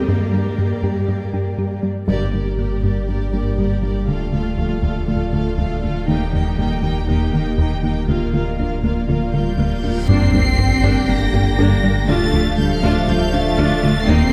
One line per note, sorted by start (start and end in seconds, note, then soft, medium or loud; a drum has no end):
0.00 1.85 G3 medium
0.00 2.07 G3 medium
0.00 2.07 A#3 medium
0.00 1.85 G4 medium
0.00 2.08 G4 medium
0.00 1.84 A#4 medium
0.08 0.23 G2 medium
0.08 1.85 G2 soft
0.08 0.23 G3 medium
0.08 1.84 A#3 medium
0.08 1.83 G4 medium
0.08 2.07 D5 medium
0.08 1.85 D5 soft
0.33 0.48 G3 medium
0.33 0.48 D4 soft
0.58 0.73 G2 medium
0.58 0.73 A#3 medium
0.83 0.98 G2 soft
0.83 0.99 G4 soft
1.08 1.24 G2 medium
1.08 1.24 G3 medium
1.33 1.48 G2 medium
1.33 1.49 G4 soft
1.58 1.73 G2 soft
1.58 1.74 G4 medium
1.83 1.98 G3 medium
2.08 2.32 G1 soft
2.08 4.10 G1 soft
2.08 2.23 G2 loud
2.08 2.32 G2 medium
2.08 2.32 G3 soft
2.08 4.04 G3 medium
2.08 2.24 G3 medium
2.08 4.05 A#3 medium
2.08 2.32 G4 soft
2.08 4.05 G4 medium
2.08 2.32 A#4 soft
2.08 6.04 D5 medium
2.08 2.32 D5 soft
2.33 2.41 G1 soft
2.33 2.41 G2 soft
2.33 2.49 G3 soft
2.33 2.58 G3 soft
2.33 2.48 D4 soft
2.33 2.57 G4 soft
2.33 2.57 A#4 soft
2.33 2.57 D5 soft
2.58 2.67 G1 soft
2.58 2.73 G2 soft
2.58 2.66 G2 soft
2.58 2.83 G3 soft
2.58 2.74 A#3 soft
2.58 2.83 G4 soft
2.58 2.81 A#4 soft
2.58 2.82 D5 soft
2.83 2.91 G1 soft
2.83 2.98 G2 medium
2.83 2.92 G2 soft
2.83 2.98 G3 medium
2.83 3.08 G3 soft
2.83 3.08 G4 soft
2.83 3.07 A#4 soft
2.83 3.07 D5 soft
3.08 3.16 G1 soft
3.08 3.17 G2 soft
3.08 3.23 G3 soft
3.08 3.33 G3 soft
3.08 3.24 D4 soft
3.08 3.33 G4 soft
3.08 3.32 A#4 soft
3.08 3.31 D5 soft
3.32 3.42 G1 soft
3.32 3.42 G2 soft
3.32 3.48 G3 medium
3.32 3.58 G3 soft
3.32 3.49 D4 soft
3.32 3.58 G4 soft
3.32 3.57 A#4 soft
3.32 3.57 D5 soft
3.58 3.67 G1 soft
3.58 3.73 G2 medium
3.58 3.67 G2 soft
3.58 3.74 G3 medium
3.58 3.83 G3 soft
3.58 3.83 G4 soft
3.58 3.82 A#4 soft
3.58 3.82 D5 soft
3.83 3.92 G1 soft
3.83 3.92 G2 soft
3.83 3.98 G3 soft
3.83 4.08 G3 soft
3.83 3.98 D4 medium
3.83 4.08 G4 soft
3.83 4.08 A#4 soft
3.83 4.08 D5 soft
4.07 6.10 D1 soft
4.07 4.23 D2 medium
4.07 4.16 D2 soft
4.07 4.23 D3 medium
4.07 6.09 F3 medium
4.07 4.32 A3 soft
4.07 6.08 A3 medium
4.07 4.32 F4 soft
4.07 4.31 A4 soft
4.07 6.09 A4 medium
4.07 4.32 F5 soft
4.33 4.41 D2 soft
4.33 4.48 D3 soft
4.33 4.48 A3 soft
4.33 4.57 A3 soft
4.33 4.57 F4 soft
4.33 4.57 A4 soft
4.33 4.57 F5 soft
4.57 4.73 D2 medium
4.57 4.66 D2 soft
4.57 4.73 F3 soft
4.57 4.81 A3 soft
4.57 4.82 F4 soft
4.57 4.83 A4 soft
4.57 4.82 F5 soft
4.83 4.98 D2 medium
4.83 4.91 D2 soft
4.83 4.98 D3 medium
4.83 5.08 A3 soft
4.83 5.08 F4 soft
4.83 5.07 A4 soft
4.83 5.07 F5 soft
5.08 5.16 D2 soft
5.08 5.23 D3 soft
5.08 5.23 A3 soft
5.08 5.32 A3 soft
5.08 5.32 F4 soft
5.08 5.32 A4 soft
5.08 5.32 F5 soft
5.33 5.41 D2 soft
5.33 5.42 D2 soft
5.33 5.48 D3 medium
5.33 5.48 A3 medium
5.33 5.57 A3 soft
5.33 5.57 F4 soft
5.33 5.57 A4 soft
5.33 5.57 F5 soft
5.58 5.73 D2 medium
5.58 5.66 D2 soft
5.58 5.67 D2 soft
5.58 5.73 D3 medium
5.58 5.82 A3 soft
5.58 5.82 F4 soft
5.58 5.83 A4 soft
5.58 5.82 F5 soft
5.83 5.91 D2 soft
5.83 5.92 D2 medium
5.83 5.98 D3 soft
5.83 6.08 A3 soft
5.83 5.98 A3 medium
5.83 6.08 F4 soft
5.83 6.08 A4 soft
5.83 6.08 F5 soft
6.08 8.10 D#1 medium
6.08 6.23 D#2 medium
6.08 6.16 D#2 medium
6.08 6.17 D#2 medium
6.08 6.23 D#3 medium
6.08 8.09 D#3 medium
6.08 6.33 A#3 soft
6.08 10.09 A#3 medium
6.08 6.33 D#4 soft
6.08 8.08 G4 medium
6.08 6.33 G4 medium
6.08 8.09 D#5 medium
6.08 6.33 G5 soft
6.33 6.41 D#2 medium
6.33 6.42 D#2 medium
6.33 6.48 D#3 medium
6.33 6.48 A#3 soft
6.33 6.57 A#3 soft
6.33 6.57 D#4 soft
6.33 6.58 G4 soft
6.33 6.58 G5 soft
6.58 6.73 D#2 medium
6.58 6.66 D#2 medium
6.58 6.67 D#2 medium
6.58 6.73 G3 medium
6.58 6.83 A#3 medium
6.58 6.82 D#4 soft
6.58 6.83 G4 medium
6.58 6.83 G5 medium
6.83 6.98 D#2 medium
6.83 6.92 D#2 medium
6.83 6.92 D#2 soft
6.83 6.98 D#3 medium
6.83 7.07 A#3 soft
6.83 7.07 D#4 soft
6.83 7.08 G4 soft
6.83 7.08 G5 soft
7.08 7.16 D#2 medium
7.08 7.17 D#2 medium
7.08 7.23 D#3 medium
7.08 7.33 A#3 medium
7.08 7.24 A#3 medium
7.08 7.33 D#4 medium
7.08 7.33 G4 medium
7.08 7.33 G5 soft
7.33 7.42 D#2 medium
7.33 7.48 D#3 medium
7.33 7.49 A#3 medium
7.33 7.57 A#3 soft
7.33 7.57 D#4 soft
7.33 7.58 G4 soft
7.33 7.58 G5 soft
7.58 7.73 D#2 medium
7.58 7.67 D#2 soft
7.58 7.67 D#2 medium
7.58 7.74 D#3 medium
7.58 7.83 A#3 soft
7.58 7.83 D#4 soft
7.58 7.83 G4 soft
7.58 7.83 G5 soft
7.83 7.92 D#2 soft
7.83 7.98 D#3 soft
7.83 7.99 A#3 medium
7.83 8.07 A#3 soft
7.83 8.08 D#4 soft
7.83 8.08 G4 soft
7.83 8.08 G5 soft
8.08 10.08 D1 medium
8.08 8.23 D2 medium
8.08 8.17 D2 soft
8.08 10.09 F3 medium
8.08 8.32 A#3 soft
8.08 8.24 A#3 medium
8.08 8.32 F4 soft
8.08 10.09 F4 medium
8.08 8.33 A#4 soft
8.08 10.08 D5 medium
8.08 8.33 F5 soft
8.08 reverse cymbal soft
8.33 8.42 D2 soft
8.33 8.48 D3 medium
8.33 8.58 A#3 soft
8.33 8.58 F4 soft
8.33 8.49 F4 soft
8.33 8.57 A#4 soft
8.33 8.57 F5 soft
8.58 8.67 D2 soft
8.58 8.74 D2 medium
8.58 8.67 D2 soft
8.58 8.82 A#3 soft
8.58 8.74 D4 medium
8.58 8.82 F4 soft
8.58 8.83 A#4 soft
8.58 8.83 F5 soft
8.84 8.99 D2 medium
8.84 8.92 D2 soft
8.84 9.08 A#3 soft
8.84 8.99 A#3 medium
8.84 9.08 F4 soft
8.84 9.07 A#4 soft
8.84 9.07 F5 soft
9.08 9.17 D2 soft
9.08 9.24 D3 medium
9.08 9.33 A#3 soft
9.08 9.33 F4 soft
9.08 9.24 F4 soft
9.08 9.33 A#4 soft
9.08 9.33 F5 soft
9.33 9.42 D2 soft
9.33 9.49 D3 medium
9.33 10.05 G3 medium
9.33 9.57 A#3 soft
9.33 9.49 F4 medium
9.33 9.58 F4 soft
9.33 9.58 A#4 soft
9.33 9.58 F5 soft
9.33 10.04 G6 medium
9.58 9.73 D2 medium
9.58 9.67 D2 soft
9.58 9.83 A#3 soft
9.58 9.74 A#3 medium
9.58 9.83 F4 soft
9.58 9.83 A#4 soft
9.58 9.83 F5 soft
9.84 9.92 D2 soft
9.84 9.99 D3 soft
9.84 10.07 A#3 soft
9.84 10.08 F4 soft
9.84 9.99 F4 medium
9.84 10.08 A#4 soft
9.84 10.08 F5 soft
10.08 12.10 G1 medium
10.08 10.23 G2 medium
10.08 10.17 G2 medium
10.08 12.04 D3 medium
10.08 12.05 D3 medium
10.08 12.04 G3 medium
10.08 10.24 G3 medium
10.08 10.32 A#3 medium
10.08 11.08 C4 medium
10.08 10.32 D4 medium
10.08 14.05 D4 medium
10.08 12.05 G4 medium
10.08 14.05 D5 medium
10.08 12.05 G5 medium
10.08 11.08 C7 loud
10.08 sub drop medium
10.33 10.48 G2 medium
10.33 10.42 G2 medium
10.33 10.49 A#3 medium
10.33 10.42 A#3 soft
10.33 10.42 D4 medium
10.58 10.73 G2 medium
10.84 10.92 G2 medium
10.84 10.99 G2 loud
10.84 10.99 G3 medium
10.84 11.07 A#3 medium
10.84 11.07 D4 medium
11.08 11.16 G2 soft
11.08 11.24 G2 medium
11.08 12.09 A#3 medium
11.08 11.17 A#3 soft
11.08 11.24 A#3 medium
11.08 11.17 D4 soft
11.08 12.09 A#6 medium
11.34 11.49 G2 medium
11.34 11.42 G2 soft
11.34 11.42 A#3 medium
11.34 11.49 G4 medium
11.59 11.74 G2 medium
11.59 11.67 G2 medium
11.59 11.74 G3 loud
11.59 11.82 A#3 medium
11.59 11.82 D4 medium
11.83 11.92 G2 medium
11.83 11.99 G3 medium
11.83 11.93 A#3 medium
11.83 11.98 D4 medium
11.83 11.92 D4 medium
12.08 14.10 D1 medium
12.08 12.23 D2 loud
12.08 12.17 D2 medium
12.08 12.24 D3 medium
12.08 14.04 F3 medium
12.08 14.09 F3 medium
12.08 12.57 A3 medium
12.08 14.04 A3 medium
12.08 12.32 D4 medium
12.08 14.04 F4 medium
12.08 12.32 F4 medium
12.08 14.04 A4 medium
12.08 14.09 A4 medium
12.08 14.08 F5 medium
12.08 12.57 A6 medium
12.33 12.48 D2 medium
12.33 12.42 D2 medium
12.33 12.48 F3 medium
12.33 12.42 D4 medium
12.33 12.42 F4 soft
12.58 12.73 D2 medium
12.58 12.75 G3 medium
12.58 12.75 G6 medium
12.75 12.92 F3 medium
12.75 12.92 F6 medium
12.83 12.98 D2 loud
12.83 12.91 D2 medium
12.83 12.98 D3 medium
12.83 13.07 D4 medium
12.83 13.06 F4 medium
12.92 13.08 A3 medium
12.92 13.08 A6 medium
13.08 13.16 D2 medium
13.08 13.23 D2 medium
13.08 13.23 F3 medium
13.08 13.33 G3 medium
13.08 13.17 D4 medium
13.08 13.17 F4 soft
13.08 13.34 G6 medium
13.33 13.41 D2 soft
13.33 13.49 D2 medium
13.33 14.09 A3 medium
13.33 13.48 D4 medium
13.33 13.42 D4 medium
13.33 14.09 A6 medium
13.58 13.66 D2 medium
13.58 13.74 D2 medium
13.58 13.73 D3 loud
13.58 13.82 D4 medium
13.58 13.82 F4 medium
13.83 13.91 D2 medium
13.83 13.98 D3 medium
13.83 13.98 A3 medium
13.83 13.92 D4 medium
13.83 13.91 F4 medium
14.08 14.33 D#1 medium
14.08 14.16 D#2 medium
14.08 14.23 D#2 medium
14.08 14.33 A#2 medium
14.08 14.33 D#3 medium
14.08 14.23 D#3 medium
14.08 14.33 G3 medium
14.08 14.32 A#3 medium
14.08 14.33 C4 medium
14.08 14.32 D#4 medium
14.08 14.33 G4 medium
14.08 14.33 G5 medium
14.08 14.33 C7 loud